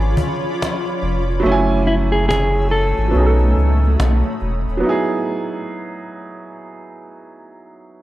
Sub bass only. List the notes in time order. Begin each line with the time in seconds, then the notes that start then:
Already playing: G#1
1.02 F1
1.45 F#1
2.98 G#1
3.15 B1
3.57 C#2
3.99 B1
4.41 E1
4.67 D#1